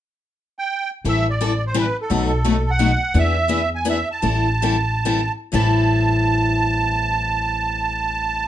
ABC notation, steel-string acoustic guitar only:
X:1
M:3/4
L:1/16
Q:"Swing" 1/4=167
K:Am
V:1 name="Steel-string acoustic guitar"
z12 | [E,G,CEA]2 z2 [E,G,CEA] z3 [E,G,CEA] z3 | [B,,^F,A,^D^F]2 z2 [B,,F,A,DF] z3 [B,,F,A,DF] z3 | [E,B,D^G]2 z2 [E,B,DG] z3 [E,B,DG] z3 |
[E,G,CEA]2 z2 [E,G,CEA] z3 [E,G,CEA] z3 | [A,,E,G,CEA]12- | [A,,E,G,CEA]12 |]